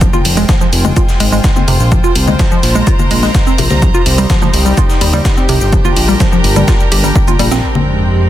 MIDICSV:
0, 0, Header, 1, 8, 480
1, 0, Start_track
1, 0, Tempo, 476190
1, 13, Time_signature, 4, 2, 24, 8
1, 8360, End_track
2, 0, Start_track
2, 0, Title_t, "String section"
2, 0, Program_c, 0, 48
2, 0, Note_on_c, 0, 62, 83
2, 0, Note_on_c, 0, 70, 86
2, 0, Note_on_c, 0, 79, 83
2, 13, Note_on_c, 0, 65, 79
2, 74, Note_on_c, 0, 68, 66
2, 252, Note_on_c, 0, 72, 89
2, 781, Note_off_c, 0, 62, 0
2, 781, Note_off_c, 0, 70, 0
2, 1963, Note_on_c, 0, 70, 70
2, 2557, Note_off_c, 0, 68, 0
2, 2702, Note_off_c, 0, 79, 0
2, 2720, Note_on_c, 0, 82, 84
2, 3853, Note_on_c, 0, 63, 86
2, 4039, Note_on_c, 0, 67, 88
2, 4567, Note_off_c, 0, 82, 0
2, 4615, Note_on_c, 0, 79, 81
2, 4622, Note_off_c, 0, 65, 0
2, 4622, Note_off_c, 0, 70, 0
2, 5773, Note_off_c, 0, 63, 0
2, 5773, Note_on_c, 0, 62, 80
2, 5874, Note_on_c, 0, 70, 89
2, 6541, Note_off_c, 0, 72, 0
2, 7692, Note_on_c, 0, 60, 74
2, 7693, Note_off_c, 0, 67, 0
2, 7970, Note_on_c, 0, 56, 81
2, 8252, Note_on_c, 0, 77, 72
2, 8352, Note_off_c, 0, 79, 0
2, 8360, Note_off_c, 0, 56, 0
2, 8360, Note_off_c, 0, 60, 0
2, 8360, Note_off_c, 0, 62, 0
2, 8360, Note_off_c, 0, 70, 0
2, 8360, Note_off_c, 0, 77, 0
2, 8360, End_track
3, 0, Start_track
3, 0, Title_t, "Synth arpeggio sound"
3, 0, Program_c, 1, 84
3, 12, Note_on_c, 1, 53, 76
3, 95, Note_off_c, 1, 53, 0
3, 134, Note_on_c, 1, 65, 102
3, 214, Note_off_c, 1, 65, 0
3, 374, Note_on_c, 1, 56, 99
3, 454, Note_off_c, 1, 56, 0
3, 492, Note_on_c, 1, 53, 103
3, 542, Note_off_c, 1, 53, 0
3, 614, Note_on_c, 1, 53, 98
3, 663, Note_off_c, 1, 53, 0
3, 855, Note_on_c, 1, 56, 94
3, 967, Note_off_c, 1, 56, 0
3, 972, Note_on_c, 1, 65, 85
3, 1022, Note_off_c, 1, 65, 0
3, 1213, Note_on_c, 1, 56, 99
3, 1262, Note_off_c, 1, 56, 0
3, 1335, Note_on_c, 1, 56, 106
3, 1415, Note_off_c, 1, 56, 0
3, 1575, Note_on_c, 1, 60, 74
3, 1655, Note_off_c, 1, 60, 0
3, 1693, Note_on_c, 1, 48, 101
3, 1742, Note_off_c, 1, 48, 0
3, 1933, Note_on_c, 1, 53, 78
3, 2015, Note_off_c, 1, 53, 0
3, 2055, Note_on_c, 1, 65, 103
3, 2135, Note_off_c, 1, 65, 0
3, 2295, Note_on_c, 1, 56, 94
3, 2375, Note_off_c, 1, 56, 0
3, 2413, Note_on_c, 1, 53, 102
3, 2463, Note_off_c, 1, 53, 0
3, 2535, Note_on_c, 1, 53, 98
3, 2583, Note_off_c, 1, 53, 0
3, 2775, Note_on_c, 1, 56, 98
3, 2887, Note_off_c, 1, 56, 0
3, 2893, Note_on_c, 1, 65, 86
3, 2943, Note_off_c, 1, 65, 0
3, 3133, Note_on_c, 1, 56, 98
3, 3183, Note_off_c, 1, 56, 0
3, 3255, Note_on_c, 1, 56, 108
3, 3335, Note_off_c, 1, 56, 0
3, 3496, Note_on_c, 1, 60, 79
3, 3575, Note_off_c, 1, 60, 0
3, 3613, Note_on_c, 1, 48, 103
3, 3663, Note_off_c, 1, 48, 0
3, 3853, Note_on_c, 1, 53, 80
3, 3936, Note_off_c, 1, 53, 0
3, 3975, Note_on_c, 1, 65, 101
3, 4055, Note_off_c, 1, 65, 0
3, 4215, Note_on_c, 1, 55, 94
3, 4295, Note_off_c, 1, 55, 0
3, 4333, Note_on_c, 1, 53, 102
3, 4383, Note_off_c, 1, 53, 0
3, 4455, Note_on_c, 1, 53, 97
3, 4503, Note_off_c, 1, 53, 0
3, 4695, Note_on_c, 1, 55, 99
3, 4807, Note_off_c, 1, 55, 0
3, 4813, Note_on_c, 1, 65, 82
3, 4863, Note_off_c, 1, 65, 0
3, 5053, Note_on_c, 1, 55, 96
3, 5103, Note_off_c, 1, 55, 0
3, 5175, Note_on_c, 1, 55, 108
3, 5255, Note_off_c, 1, 55, 0
3, 5415, Note_on_c, 1, 60, 76
3, 5495, Note_off_c, 1, 60, 0
3, 5533, Note_on_c, 1, 48, 100
3, 5582, Note_off_c, 1, 48, 0
3, 5773, Note_on_c, 1, 53, 76
3, 5855, Note_off_c, 1, 53, 0
3, 5895, Note_on_c, 1, 65, 103
3, 5975, Note_off_c, 1, 65, 0
3, 6134, Note_on_c, 1, 55, 99
3, 6214, Note_off_c, 1, 55, 0
3, 6252, Note_on_c, 1, 53, 101
3, 6302, Note_off_c, 1, 53, 0
3, 6374, Note_on_c, 1, 53, 103
3, 6423, Note_off_c, 1, 53, 0
3, 6614, Note_on_c, 1, 55, 96
3, 6727, Note_off_c, 1, 55, 0
3, 6733, Note_on_c, 1, 65, 81
3, 6782, Note_off_c, 1, 65, 0
3, 6972, Note_on_c, 1, 67, 76
3, 7089, Note_off_c, 1, 67, 0
3, 7095, Note_on_c, 1, 55, 85
3, 7207, Note_off_c, 1, 55, 0
3, 7335, Note_on_c, 1, 65, 77
3, 7414, Note_off_c, 1, 65, 0
3, 7453, Note_on_c, 1, 55, 100
3, 7569, Note_off_c, 1, 55, 0
3, 7575, Note_on_c, 1, 60, 76
3, 7623, Note_off_c, 1, 60, 0
3, 8360, End_track
4, 0, Start_track
4, 0, Title_t, "Analog synth pad"
4, 0, Program_c, 2, 89
4, 7692, Note_on_c, 2, 53, 71
4, 7692, Note_on_c, 2, 56, 76
4, 7692, Note_on_c, 2, 67, 88
4, 7693, Note_on_c, 2, 41, 82
4, 8360, Note_off_c, 2, 41, 0
4, 8360, Note_off_c, 2, 53, 0
4, 8360, Note_off_c, 2, 56, 0
4, 8360, Note_off_c, 2, 67, 0
4, 8360, End_track
5, 0, Start_track
5, 0, Title_t, "Synth drone"
5, 0, Program_c, 3, 95
5, 7693, Note_on_c, 3, 41, 75
5, 8360, Note_off_c, 3, 41, 0
5, 8360, End_track
6, 0, Start_track
6, 0, Title_t, "Analog synth bass"
6, 0, Program_c, 4, 38
6, 253, Note_on_c, 4, 29, 106
6, 455, Note_off_c, 4, 29, 0
6, 733, Note_on_c, 4, 29, 98
6, 935, Note_off_c, 4, 29, 0
6, 1213, Note_on_c, 4, 32, 92
6, 1415, Note_off_c, 4, 32, 0
6, 1693, Note_on_c, 4, 29, 96
6, 1795, Note_off_c, 4, 29, 0
6, 1815, Note_on_c, 4, 34, 85
6, 2016, Note_off_c, 4, 34, 0
6, 2172, Note_on_c, 4, 36, 99
6, 2375, Note_off_c, 4, 36, 0
6, 2652, Note_on_c, 4, 34, 91
6, 2855, Note_off_c, 4, 34, 0
6, 3133, Note_on_c, 4, 34, 90
6, 3335, Note_off_c, 4, 34, 0
6, 3612, Note_on_c, 4, 34, 87
6, 3715, Note_off_c, 4, 34, 0
6, 3735, Note_on_c, 4, 36, 76
6, 3936, Note_off_c, 4, 36, 0
6, 4092, Note_on_c, 4, 36, 105
6, 4295, Note_off_c, 4, 36, 0
6, 4572, Note_on_c, 4, 36, 103
6, 4775, Note_off_c, 4, 36, 0
6, 5052, Note_on_c, 4, 39, 91
6, 5255, Note_off_c, 4, 39, 0
6, 5533, Note_on_c, 4, 36, 93
6, 5635, Note_off_c, 4, 36, 0
6, 5655, Note_on_c, 4, 31, 87
6, 5855, Note_off_c, 4, 31, 0
6, 6012, Note_on_c, 4, 34, 96
6, 6215, Note_off_c, 4, 34, 0
6, 6492, Note_on_c, 4, 31, 90
6, 6695, Note_off_c, 4, 31, 0
6, 6973, Note_on_c, 4, 31, 94
6, 7175, Note_off_c, 4, 31, 0
6, 7453, Note_on_c, 4, 34, 100
6, 7555, Note_off_c, 4, 34, 0
6, 7575, Note_on_c, 4, 34, 85
6, 7674, Note_off_c, 4, 34, 0
6, 8360, End_track
7, 0, Start_track
7, 0, Title_t, "Impact"
7, 0, Program_c, 5, 103
7, 7693, Note_on_c, 5, 60, 68
7, 8360, Note_off_c, 5, 60, 0
7, 8360, End_track
8, 0, Start_track
8, 0, Title_t, "Drums"
8, 12, Note_on_c, 9, 82, 91
8, 13, Note_off_c, 9, 82, 0
8, 13, Note_on_c, 9, 36, 109
8, 13, Note_on_c, 9, 82, 51
8, 113, Note_off_c, 9, 36, 0
8, 114, Note_off_c, 9, 82, 0
8, 135, Note_on_c, 9, 64, 95
8, 135, Note_on_c, 9, 82, 53
8, 236, Note_off_c, 9, 64, 0
8, 236, Note_off_c, 9, 82, 0
8, 253, Note_on_c, 9, 46, 107
8, 253, Note_on_c, 9, 82, 70
8, 353, Note_off_c, 9, 82, 0
8, 354, Note_off_c, 9, 46, 0
8, 375, Note_on_c, 9, 42, 41
8, 375, Note_on_c, 9, 82, 51
8, 476, Note_off_c, 9, 42, 0
8, 476, Note_off_c, 9, 82, 0
8, 493, Note_on_c, 9, 36, 115
8, 493, Note_on_c, 9, 38, 116
8, 493, Note_on_c, 9, 82, 57
8, 593, Note_off_c, 9, 36, 0
8, 593, Note_off_c, 9, 38, 0
8, 594, Note_off_c, 9, 82, 0
8, 615, Note_on_c, 9, 82, 54
8, 716, Note_off_c, 9, 82, 0
8, 733, Note_on_c, 9, 46, 105
8, 733, Note_on_c, 9, 82, 64
8, 833, Note_off_c, 9, 46, 0
8, 834, Note_off_c, 9, 82, 0
8, 855, Note_on_c, 9, 64, 91
8, 855, Note_on_c, 9, 82, 49
8, 956, Note_off_c, 9, 64, 0
8, 956, Note_off_c, 9, 82, 0
8, 972, Note_on_c, 9, 82, 55
8, 973, Note_off_c, 9, 82, 0
8, 973, Note_on_c, 9, 36, 121
8, 973, Note_on_c, 9, 82, 92
8, 1074, Note_off_c, 9, 36, 0
8, 1074, Note_off_c, 9, 82, 0
8, 1095, Note_on_c, 9, 38, 52
8, 1095, Note_on_c, 9, 82, 53
8, 1195, Note_off_c, 9, 38, 0
8, 1196, Note_off_c, 9, 82, 0
8, 1212, Note_on_c, 9, 46, 109
8, 1213, Note_on_c, 9, 82, 66
8, 1313, Note_off_c, 9, 46, 0
8, 1313, Note_off_c, 9, 82, 0
8, 1335, Note_on_c, 9, 82, 53
8, 1435, Note_off_c, 9, 82, 0
8, 1453, Note_on_c, 9, 36, 116
8, 1453, Note_on_c, 9, 38, 111
8, 1453, Note_on_c, 9, 82, 87
8, 1553, Note_off_c, 9, 38, 0
8, 1553, Note_off_c, 9, 82, 0
8, 1554, Note_off_c, 9, 36, 0
8, 1574, Note_on_c, 9, 64, 97
8, 1574, Note_on_c, 9, 82, 52
8, 1675, Note_off_c, 9, 64, 0
8, 1675, Note_off_c, 9, 82, 0
8, 1692, Note_on_c, 9, 46, 107
8, 1693, Note_on_c, 9, 82, 70
8, 1793, Note_off_c, 9, 46, 0
8, 1794, Note_off_c, 9, 82, 0
8, 1815, Note_on_c, 9, 82, 56
8, 1916, Note_off_c, 9, 82, 0
8, 1933, Note_on_c, 9, 36, 110
8, 1933, Note_on_c, 9, 82, 83
8, 2034, Note_off_c, 9, 36, 0
8, 2034, Note_off_c, 9, 82, 0
8, 2055, Note_on_c, 9, 82, 55
8, 2156, Note_off_c, 9, 82, 0
8, 2172, Note_on_c, 9, 46, 107
8, 2173, Note_on_c, 9, 82, 70
8, 2273, Note_off_c, 9, 46, 0
8, 2274, Note_off_c, 9, 82, 0
8, 2295, Note_on_c, 9, 64, 91
8, 2295, Note_on_c, 9, 82, 52
8, 2396, Note_off_c, 9, 64, 0
8, 2396, Note_off_c, 9, 82, 0
8, 2413, Note_on_c, 9, 36, 107
8, 2413, Note_on_c, 9, 38, 112
8, 2413, Note_on_c, 9, 82, 87
8, 2514, Note_off_c, 9, 36, 0
8, 2514, Note_off_c, 9, 38, 0
8, 2514, Note_off_c, 9, 82, 0
8, 2535, Note_on_c, 9, 82, 54
8, 2636, Note_off_c, 9, 82, 0
8, 2653, Note_on_c, 9, 38, 45
8, 2653, Note_on_c, 9, 46, 96
8, 2653, Note_on_c, 9, 82, 61
8, 2754, Note_off_c, 9, 38, 0
8, 2754, Note_off_c, 9, 46, 0
8, 2754, Note_off_c, 9, 82, 0
8, 2775, Note_on_c, 9, 82, 52
8, 2876, Note_off_c, 9, 82, 0
8, 2893, Note_on_c, 9, 36, 116
8, 2893, Note_on_c, 9, 82, 57
8, 2994, Note_off_c, 9, 36, 0
8, 2994, Note_off_c, 9, 82, 0
8, 3016, Note_on_c, 9, 64, 91
8, 3016, Note_on_c, 9, 82, 53
8, 3117, Note_off_c, 9, 64, 0
8, 3117, Note_off_c, 9, 82, 0
8, 3133, Note_on_c, 9, 46, 103
8, 3133, Note_on_c, 9, 82, 68
8, 3234, Note_off_c, 9, 46, 0
8, 3234, Note_off_c, 9, 82, 0
8, 3255, Note_on_c, 9, 38, 42
8, 3255, Note_on_c, 9, 82, 54
8, 3356, Note_off_c, 9, 38, 0
8, 3356, Note_off_c, 9, 82, 0
8, 3373, Note_on_c, 9, 36, 119
8, 3373, Note_on_c, 9, 38, 115
8, 3373, Note_on_c, 9, 82, 55
8, 3474, Note_off_c, 9, 36, 0
8, 3474, Note_off_c, 9, 38, 0
8, 3474, Note_off_c, 9, 82, 0
8, 3495, Note_on_c, 9, 82, 55
8, 3596, Note_off_c, 9, 82, 0
8, 3612, Note_on_c, 9, 46, 102
8, 3613, Note_on_c, 9, 82, 72
8, 3713, Note_off_c, 9, 46, 0
8, 3714, Note_off_c, 9, 82, 0
8, 3735, Note_on_c, 9, 38, 53
8, 3735, Note_on_c, 9, 64, 102
8, 3735, Note_on_c, 9, 82, 56
8, 3836, Note_off_c, 9, 38, 0
8, 3836, Note_off_c, 9, 64, 0
8, 3836, Note_off_c, 9, 82, 0
8, 3853, Note_on_c, 9, 36, 105
8, 3853, Note_on_c, 9, 82, 88
8, 3954, Note_off_c, 9, 36, 0
8, 3954, Note_off_c, 9, 82, 0
8, 3975, Note_on_c, 9, 82, 59
8, 4075, Note_off_c, 9, 82, 0
8, 4092, Note_on_c, 9, 46, 99
8, 4093, Note_on_c, 9, 82, 69
8, 4193, Note_off_c, 9, 46, 0
8, 4194, Note_off_c, 9, 82, 0
8, 4214, Note_on_c, 9, 82, 54
8, 4215, Note_on_c, 9, 42, 43
8, 4315, Note_off_c, 9, 82, 0
8, 4316, Note_off_c, 9, 42, 0
8, 4332, Note_on_c, 9, 82, 59
8, 4333, Note_off_c, 9, 82, 0
8, 4333, Note_on_c, 9, 36, 104
8, 4333, Note_on_c, 9, 38, 119
8, 4333, Note_on_c, 9, 82, 90
8, 4434, Note_off_c, 9, 36, 0
8, 4434, Note_off_c, 9, 38, 0
8, 4434, Note_off_c, 9, 82, 0
8, 4454, Note_on_c, 9, 64, 100
8, 4454, Note_on_c, 9, 82, 58
8, 4555, Note_off_c, 9, 64, 0
8, 4555, Note_off_c, 9, 82, 0
8, 4572, Note_on_c, 9, 46, 101
8, 4573, Note_on_c, 9, 82, 66
8, 4673, Note_off_c, 9, 46, 0
8, 4674, Note_off_c, 9, 82, 0
8, 4695, Note_on_c, 9, 82, 55
8, 4795, Note_off_c, 9, 82, 0
8, 4812, Note_on_c, 9, 82, 56
8, 4813, Note_off_c, 9, 82, 0
8, 4813, Note_on_c, 9, 36, 111
8, 4813, Note_on_c, 9, 82, 94
8, 4914, Note_off_c, 9, 36, 0
8, 4914, Note_off_c, 9, 82, 0
8, 4935, Note_on_c, 9, 38, 51
8, 4935, Note_on_c, 9, 82, 56
8, 5036, Note_off_c, 9, 38, 0
8, 5036, Note_off_c, 9, 82, 0
8, 5052, Note_on_c, 9, 46, 106
8, 5053, Note_on_c, 9, 82, 64
8, 5153, Note_off_c, 9, 46, 0
8, 5154, Note_off_c, 9, 82, 0
8, 5175, Note_on_c, 9, 64, 95
8, 5175, Note_on_c, 9, 82, 55
8, 5276, Note_off_c, 9, 64, 0
8, 5276, Note_off_c, 9, 82, 0
8, 5293, Note_on_c, 9, 36, 115
8, 5293, Note_on_c, 9, 38, 119
8, 5293, Note_on_c, 9, 82, 92
8, 5393, Note_off_c, 9, 38, 0
8, 5393, Note_off_c, 9, 82, 0
8, 5394, Note_off_c, 9, 36, 0
8, 5415, Note_on_c, 9, 82, 59
8, 5516, Note_off_c, 9, 82, 0
8, 5532, Note_on_c, 9, 46, 97
8, 5533, Note_on_c, 9, 82, 71
8, 5633, Note_off_c, 9, 46, 0
8, 5634, Note_off_c, 9, 82, 0
8, 5655, Note_on_c, 9, 82, 59
8, 5755, Note_off_c, 9, 82, 0
8, 5773, Note_on_c, 9, 36, 113
8, 5773, Note_on_c, 9, 82, 87
8, 5874, Note_off_c, 9, 36, 0
8, 5874, Note_off_c, 9, 82, 0
8, 5895, Note_on_c, 9, 64, 92
8, 5895, Note_on_c, 9, 82, 58
8, 5996, Note_off_c, 9, 64, 0
8, 5996, Note_off_c, 9, 82, 0
8, 6013, Note_on_c, 9, 46, 101
8, 6013, Note_on_c, 9, 82, 66
8, 6113, Note_off_c, 9, 46, 0
8, 6113, Note_off_c, 9, 82, 0
8, 6135, Note_on_c, 9, 82, 58
8, 6236, Note_off_c, 9, 82, 0
8, 6253, Note_on_c, 9, 36, 117
8, 6253, Note_on_c, 9, 38, 120
8, 6253, Note_on_c, 9, 82, 88
8, 6353, Note_off_c, 9, 36, 0
8, 6354, Note_off_c, 9, 38, 0
8, 6354, Note_off_c, 9, 82, 0
8, 6375, Note_on_c, 9, 82, 60
8, 6476, Note_off_c, 9, 82, 0
8, 6493, Note_on_c, 9, 46, 97
8, 6493, Note_on_c, 9, 82, 56
8, 6594, Note_off_c, 9, 46, 0
8, 6594, Note_off_c, 9, 82, 0
8, 6615, Note_on_c, 9, 42, 40
8, 6616, Note_on_c, 9, 64, 89
8, 6616, Note_on_c, 9, 82, 55
8, 6716, Note_off_c, 9, 42, 0
8, 6716, Note_off_c, 9, 64, 0
8, 6716, Note_off_c, 9, 82, 0
8, 6733, Note_on_c, 9, 36, 119
8, 6733, Note_on_c, 9, 38, 104
8, 6733, Note_on_c, 9, 82, 59
8, 6833, Note_off_c, 9, 36, 0
8, 6834, Note_off_c, 9, 38, 0
8, 6834, Note_off_c, 9, 82, 0
8, 6855, Note_on_c, 9, 82, 58
8, 6956, Note_off_c, 9, 82, 0
8, 6973, Note_on_c, 9, 46, 109
8, 6973, Note_on_c, 9, 82, 62
8, 7074, Note_off_c, 9, 46, 0
8, 7074, Note_off_c, 9, 82, 0
8, 7095, Note_on_c, 9, 82, 60
8, 7196, Note_off_c, 9, 82, 0
8, 7213, Note_on_c, 9, 36, 112
8, 7213, Note_on_c, 9, 82, 60
8, 7313, Note_off_c, 9, 36, 0
8, 7314, Note_off_c, 9, 82, 0
8, 7335, Note_on_c, 9, 64, 91
8, 7335, Note_on_c, 9, 82, 60
8, 7436, Note_off_c, 9, 64, 0
8, 7436, Note_off_c, 9, 82, 0
8, 7453, Note_on_c, 9, 46, 97
8, 7453, Note_on_c, 9, 82, 73
8, 7554, Note_off_c, 9, 46, 0
8, 7554, Note_off_c, 9, 82, 0
8, 7575, Note_on_c, 9, 38, 59
8, 7575, Note_on_c, 9, 82, 60
8, 7676, Note_off_c, 9, 38, 0
8, 7676, Note_off_c, 9, 82, 0
8, 7815, Note_on_c, 9, 64, 88
8, 7915, Note_off_c, 9, 64, 0
8, 8360, End_track
0, 0, End_of_file